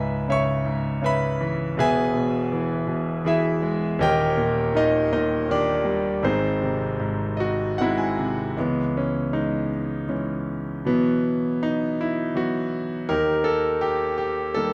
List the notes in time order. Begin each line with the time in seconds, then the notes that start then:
Already playing: C#2 G#2 B4 E5 G#5 B5
0.28 C#3 C#5 E5 C#6
0.64 G#2
1.02 C#3 B4 E5
1.06 B5
1.40 E3
1.77 E1 E2 G#4 B4 E5 G#5
2.14 B2
2.52 E3
2.87 B2
3.25 E3 E4 G#4 E5
3.62 G#3
3.99 D#1 D#2 G4 A#4 D#5 G5
4.37 A#2
4.75 D#3 D#4 D#5
5.12 A#2 D#4 D#5
5.49 D#3 D4 G4 D5
5.85 G3
6.23 G#1 G#2 C4 D#4 G#4 C5
6.61 C3
7.00 G#2
7.37 F#4 D#5
7.78 G#2 G#3 C4 E4 F#5
7.98 G#5
8.19 C3
8.57 C#2 E3 G#3 B3
8.97 C#4
9.33 G#3 D#4
10.09 E3 G#3 C#4
10.85 B2 E3 F#3 B3
11.63 D#4
12.01 E4
12.35 E3 F#3 B3 F#4
13.09 D#2 D#4 G4 A#4
13.44 A4
13.81 G4
14.18 G4
14.54 D#3 G3 A#3 A4